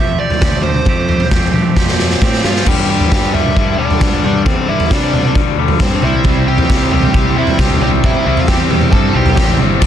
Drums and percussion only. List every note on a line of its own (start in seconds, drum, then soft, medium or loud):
0.30 floor tom medium
0.41 kick loud
0.41 snare medium
0.41 floor tom medium
0.53 mid tom medium
0.63 floor tom medium
0.74 mid tom medium
0.85 kick loud
0.85 floor tom medium
1.09 floor tom medium
1.20 floor tom medium
1.31 kick loud
1.31 snare medium
1.31 floor tom medium
1.53 mid tom medium
1.77 kick medium
1.77 snare medium
1.88 snare medium
2.00 snare medium
2.11 snare medium
2.22 kick loud
2.22 snare medium
2.34 snare medium
2.44 snare loud
2.56 snare medium
2.66 kick loud
2.66 floor tom loud
2.66 crash loud
3.00 floor tom medium
3.12 kick loud
3.12 snare medium
3.34 floor tom medium
3.46 mid tom medium
3.56 kick medium
3.91 floor tom medium
4.01 kick loud
4.01 snare medium
4.01 mid tom medium
4.12 floor tom medium
4.24 mid tom medium
4.46 kick loud
4.46 floor tom medium
4.80 floor tom medium
4.91 kick loud
4.91 snare medium
5.13 floor tom medium
5.13 mid tom medium
5.25 mid tom medium
5.35 kick loud
5.68 floor tom medium
5.79 kick loud
5.79 snare medium
5.79 mid tom medium
5.90 floor tom medium
6.02 mid tom medium
6.24 kick loud
6.24 floor tom medium
6.58 floor tom medium
6.70 kick loud
6.70 snare medium
6.91 floor tom medium
7.03 mid tom medium
7.14 kick loud
7.47 floor tom medium
7.59 kick loud
7.59 snare medium
7.59 mid tom medium
7.70 floor tom medium
7.81 mid tom medium
8.04 kick loud
8.04 floor tom medium
8.37 floor tom medium
8.48 kick loud
8.48 snare medium
8.71 floor tom medium
8.71 mid tom medium
8.81 mid tom medium
8.93 kick loud
9.26 floor tom medium
9.37 kick loud
9.37 snare medium
9.37 mid tom medium
9.49 floor tom medium
9.59 mid tom medium
9.82 kick loud
9.82 crash loud